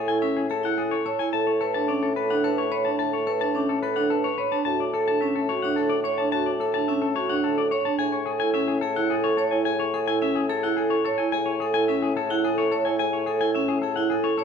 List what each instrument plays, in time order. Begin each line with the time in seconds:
Already playing: bassoon A2, clean electric guitar G#4, vibraphone A4
0.08 vibraphone E4, clean electric guitar G#5
0.22 vibraphone C#4, clean electric guitar E5
0.37 clean electric guitar G#4
0.50 vibraphone G#4, clean electric guitar A4
0.63 vibraphone E4, clean electric guitar F#5
0.77 clean electric guitar G#4, vibraphone A4
0.91 clean electric guitar C#5
1.06 clean electric guitar A4, vibraphone C#5
1.19 vibraphone E4, clean electric guitar G#5
1.33 bassoon A2, vibraphone A4, clean electric guitar A5
1.47 clean electric guitar C#5
1.61 clean electric guitar A4, vibraphone B4
1.74 vibraphone D4, clean electric guitar A5
1.88 vibraphone C#4, clean electric guitar D5
2.03 clean electric guitar A4
2.16 vibraphone A4, clean electric guitar B4
2.30 vibraphone D4, clean electric guitar F#5
2.44 clean electric guitar A4, vibraphone B4
2.58 clean electric guitar C#5
2.72 clean electric guitar B4, vibraphone C#5
2.85 vibraphone D4, clean electric guitar A5
2.99 vibraphone A4, clean electric guitar A5
3.13 clean electric guitar C#5
3.27 clean electric guitar A4, vibraphone B4
3.41 vibraphone D4, clean electric guitar A5
3.55 vibraphone C#4, clean electric guitar D5
3.69 clean electric guitar A4
3.83 vibraphone A4, clean electric guitar B4
3.96 vibraphone D4, clean electric guitar F#5
4.10 clean electric guitar A4, vibraphone B4
4.24 clean electric guitar C#5
4.38 clean electric guitar B4, vibraphone C#5
4.52 vibraphone D4, clean electric guitar A5
4.65 bassoon A2, vibraphone F#4, clean electric guitar A5
4.80 clean electric guitar D5
4.94 clean electric guitar A4, vibraphone A4
5.08 vibraphone D4, clean electric guitar A5
5.21 vibraphone C#4, clean electric guitar E5
5.35 clean electric guitar A4
5.49 vibraphone F#4, clean electric guitar C#5
5.62 vibraphone D4, clean electric guitar F#5
5.76 clean electric guitar A4, vibraphone A4
5.89 clean electric guitar D5
6.04 clean electric guitar C#5, vibraphone C#5
6.18 vibraphone D4, clean electric guitar A5
6.32 vibraphone F#4, clean electric guitar A5
6.46 clean electric guitar D5
6.60 clean electric guitar A4, vibraphone A4
6.74 vibraphone D4, clean electric guitar A5
6.88 vibraphone C#4, clean electric guitar E5
7.02 clean electric guitar A4
7.16 vibraphone F#4, clean electric guitar C#5
7.29 vibraphone D4, clean electric guitar F#5
7.44 vibraphone A4, clean electric guitar A4
7.58 clean electric guitar D5
7.71 clean electric guitar C#5, vibraphone C#5
7.85 vibraphone D4, clean electric guitar A5
7.99 bassoon A2, vibraphone G#4, clean electric guitar G#5
8.12 clean electric guitar C#5
8.26 clean electric guitar G#4, vibraphone A4
8.40 vibraphone E4, clean electric guitar G#5
8.54 vibraphone C#4, clean electric guitar E5
8.68 clean electric guitar G#4
8.81 vibraphone G#4, clean electric guitar A4
8.96 vibraphone E4, clean electric guitar F#5
9.10 clean electric guitar G#4, vibraphone A4
9.24 clean electric guitar C#5
9.37 clean electric guitar A4, vibraphone C#5
9.51 vibraphone E4, clean electric guitar G#5
9.65 vibraphone G#4, clean electric guitar G#5
9.79 clean electric guitar C#5
9.94 clean electric guitar G#4, vibraphone A4
10.07 vibraphone E4, clean electric guitar G#5
10.22 vibraphone C#4, clean electric guitar E5
10.36 clean electric guitar G#4
10.49 vibraphone G#4, clean electric guitar A4
10.63 vibraphone E4, clean electric guitar F#5
10.77 clean electric guitar G#4, vibraphone A4
10.90 clean electric guitar C#5
11.05 clean electric guitar A4, vibraphone C#5
11.18 vibraphone E4, clean electric guitar G#5
11.32 bassoon A2, vibraphone G#4, clean electric guitar G#5
11.46 clean electric guitar C#5
11.60 clean electric guitar G#4, vibraphone A4
11.74 vibraphone E4, clean electric guitar G#5
11.88 vibraphone C#4, clean electric guitar E5
12.02 clean electric guitar G#4
12.17 vibraphone G#4, clean electric guitar A4
12.30 vibraphone E4, clean electric guitar F#5
12.44 clean electric guitar G#4, vibraphone A4
12.58 clean electric guitar C#5
12.72 clean electric guitar A4, vibraphone C#5
12.85 vibraphone E4, clean electric guitar G#5
12.99 vibraphone G#4, clean electric guitar G#5
13.13 clean electric guitar C#5
13.26 clean electric guitar G#4, vibraphone A4
13.41 vibraphone E4, clean electric guitar G#5
13.55 vibraphone C#4, clean electric guitar E5
13.68 clean electric guitar G#4
13.82 vibraphone G#4, clean electric guitar A4
13.96 vibraphone E4, clean electric guitar F#5
14.10 clean electric guitar G#4, vibraphone A4
14.24 clean electric guitar C#5
14.38 clean electric guitar A4, vibraphone C#5